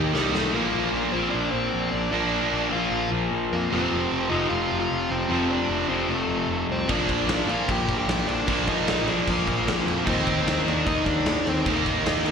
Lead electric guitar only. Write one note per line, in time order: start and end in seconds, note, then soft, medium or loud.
0.00 0.11 G4 medium
0.14 0.33 G3 medium
0.14 0.33 G4 medium
0.34 0.53 A3 medium
0.34 0.54 A4 medium
0.54 1.11 A#3 medium
0.54 1.10 A#4 medium
1.12 1.33 C4 medium
1.12 1.30 C5 medium
1.30 1.52 D4 medium
1.30 1.50 D5 loud
1.51 1.91 C5 medium
1.55 1.91 C4 medium
1.92 2.11 D5 medium
1.97 2.13 D4 medium
2.12 2.69 D4 medium
2.12 2.72 D5 loud
2.73 3.11 F4 medium
2.73 3.10 F5 medium
3.53 3.72 A#3 medium
3.53 3.73 A#4 medium
3.74 4.29 C4 medium
3.74 4.35 C5 medium
4.29 4.50 D#4 medium
4.29 4.49 D#5 medium
4.49 4.79 F4 medium
4.49 4.78 F5 loud
4.79 5.09 F4 medium
4.79 5.11 F5 medium
5.11 5.48 C4 medium
5.11 5.52 C5 medium
5.51 5.88 D4 medium
5.51 5.89 D5 medium
5.89 6.09 C4 medium
5.89 6.11 C5 medium
6.09 6.66 A3 medium
6.09 6.66 A4 medium
6.72 6.90 C4 medium
6.72 6.90 C5 medium
6.91 7.46 D4 medium
6.91 7.52 D5 medium
7.50 7.69 F4 medium
7.50 7.70 F5 medium
7.70 7.98 G4 medium
7.70 7.97 G5 loud
7.99 8.27 G4 medium
7.99 8.30 G5 medium
8.27 8.66 D4 medium
8.27 8.65 D5 loud
8.69 9.06 D#4 medium
8.69 9.08 D#5 medium
9.08 9.27 D4 medium
9.08 9.29 D5 medium
9.29 9.84 A#3 medium
9.29 9.88 A#4 loud
9.89 10.07 A#3 medium
9.89 10.09 A#4 medium
10.09 10.64 C4 medium
10.09 10.69 C5 medium
10.69 10.86 D4 medium
10.69 10.87 D5 medium
10.87 11.04 D#4 medium
10.87 11.06 D#5 loud
11.05 11.43 D4 medium
11.05 11.47 D5 medium
11.48 11.66 C4 medium
11.48 11.68 C5 medium
11.70 12.31 A#3 medium
11.70 12.31 A#4 medium